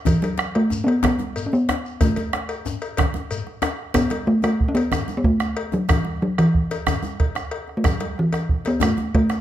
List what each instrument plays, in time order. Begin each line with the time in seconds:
0.05 talking drum E3, bombo low, cowbell, djembe bass, low conga, shekere
0.22 talking drum F#3, cowbell, high conga, djembe tone, shekere
0.38 bombo rim, djembe slap, high conga, shekere
0.55 talking drum A3, bombo rim, cowbell
0.70 djembe tone, high conga, shekere
0.84 talking drum B3 C#4
0.88 cowbell
1.03 talking drum B3, bombo rim, bombo low, cowbell, djembe slap, djembe bass, low conga, shekere
1.19 djembe slap, djembe tone, high conga
1.36 cowbell, djembe slap, shekere
1.46 talking drum C#4
1.52 talking drum B3, high conga, shekere
1.69 bombo rim, djembe slap, djembe tone
1.86 shekere
2.01 talking drum A3, bombo low, cowbell, high conga, djembe bass, low conga, shekere
2.16 cowbell, djembe slap, djembe tone, high conga, shekere
2.33 bombo rim, djembe slap, high conga
2.49 bombo rim, cowbell, shekere
2.65 bombo rim, high conga, djembe tone, shekere
2.82 cowbell, shekere
2.97 bombo rim, bombo low, cowbell, djembe slap, djembe bass, low conga
3.14 djembe slap, high conga, djembe tone
3.31 cowbell, djembe slap, high conga, shekere
3.47 bombo rim, djembe slap, high conga
3.62 bombo rim, cowbell, djembe slap, djembe tone, high conga, shekere
3.79 bombo rim
3.94 talking drum B3, bombo rim, bombo low, cowbell, high conga, low conga, djembe bass, shekere
4.10 cowbell, djembe slap, high conga
4.27 talking drum A3, bombo rim
4.42 talking drum A3, bombo rim, cowbell, djembe tone, shekere
4.60 bombo low
4.68 talking drum C#4
4.75 talking drum B3, cowbell, djembe slap, high conga, shekere
4.92 bombo rim, cowbell, high conga, low conga, djembe bass, shekere
5.08 high conga, djembe tone, shekere
5.17 talking drum B3
5.24 talking drum A3, bombo low, high conga
5.40 bombo rim, djembe slap, shekere
5.57 bombo rim, cowbell
5.72 talking drum F#3, bombo rim, djembe slap, djembe tone
5.89 talking drum E3, bombo rim, bombo low, cowbell, high conga, low conga, djembe bass, shekere
6.05 high conga
6.22 talking drum F#3, bombo rim
6.38 talking drum E3, bombo rim, cowbell, djembe tone, shekere
6.55 bombo low
6.71 cowbell, djembe slap, high conga, shekere
6.87 bombo rim, cowbell, high conga, low conga, djembe bass, shekere
7.03 djembe tone, high conga, shekere
7.20 bombo low, cowbell, high conga
7.35 bombo rim, djembe slap, shekere
7.51 bombo rim, cowbell
7.67 bombo rim, djembe slap
7.77 talking drum A3
7.84 talking drum F#3, bombo rim, bombo low, cowbell, high conga, low conga, djembe bass, shekere
8.00 cowbell, djembe slap, high conga
8.18 talking drum E3, bombo rim
8.32 bombo rim, cowbell, djembe tone, shekere
8.49 bombo low
8.65 talking drum B3, cowbell, djembe slap, high conga, shekere
8.80 talking drum A3, bombo rim, cowbell, high conga, djembe bass, low conga, shekere
8.97 djembe tone, high conga
9.14 talking drum A3, bombo low, cowbell, high conga
9.30 bombo rim, djembe slap, shekere